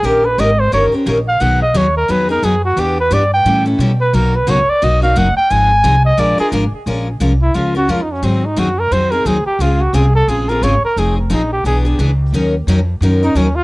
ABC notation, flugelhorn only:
X:1
M:4/4
L:1/8
Q:"Swing" 1/4=176
K:Ebm
V:1 name="Flugelhorn"
=G c e =c d z2 f | g e d B c B A G | =G =B =d =g2 z2 B | ^A =B d =d ^d f ^f =g |
a3 e =d A z2 | [K:Bbm] z3 =E F G (3F _E D | C E G B c B A =G | F G A =A _A B d B |
A C E =G ^G z3 | z4 z E D F |]